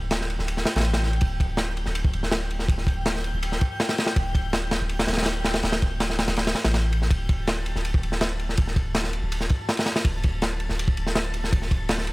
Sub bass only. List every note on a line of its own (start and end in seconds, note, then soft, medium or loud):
0.00 0.37 D1 loud
0.39 0.65 D1 medium
0.76 1.20 A1 loud
1.22 1.85 D1 medium
1.86 2.12 D1 loud
2.14 2.67 D1 medium
2.69 3.32 D1 medium
3.33 3.59 D1 loud
4.16 4.79 D1 medium
4.81 5.07 D1 medium
5.08 5.62 D1 medium
5.63 6.26 D1 loud
6.28 6.54 D1 loud
6.65 7.09 A1 loud
7.11 7.74 D1 medium
7.75 8.01 D1 medium
8.03 8.56 D1 medium
8.58 9.21 D1 medium
9.22 9.48 D1 medium
10.05 10.68 D1 loud
10.70 10.96 D1 medium
10.97 11.51 D1 medium
11.53 12.13 D1 loud